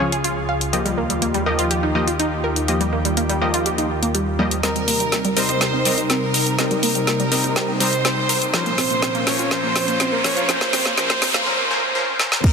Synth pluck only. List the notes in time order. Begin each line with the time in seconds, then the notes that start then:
0.12 G#4
0.24 F4
0.49 F5
0.86 G3
0.98 A#3
1.10 G3
1.22 A#3
1.34 G3
1.46 A#4
1.59 F4
1.71 G4
1.83 D#4
2.07 F4
2.19 D#4
2.44 A#4
2.81 G3
2.93 A#3
3.05 G3
3.17 A#3
3.29 G3
3.41 A#4
3.54 F4
3.66 G4
3.78 D#4
4.03 A#3
4.15 G3
4.39 G3
4.76 G3
4.88 A#3
5.00 G3
5.12 A#3
5.25 G3
5.37 A#4
5.49 D#4
5.61 G4
5.73 C4
5.98 D#4
6.10 C4
6.34 A#4
6.71 G3
6.83 A#3
6.95 G3
7.07 A#3
7.20 G3
7.32 A#4
7.44 D#4
7.56 G4
7.68 C4
7.93 D#4
8.05 C4
8.29 A#4
8.66 A#3
8.78 C4
8.90 A#3
9.02 C4
9.15 A#3
9.27 C5
9.39 F4
9.64 A#3
9.76 C4
9.88 A#3
10.00 C4
10.12 A#3
10.24 C5
10.37 F4
10.61 A#3
10.73 C4
10.86 A#3
11.10 A#3
11.22 C4
11.34 A#3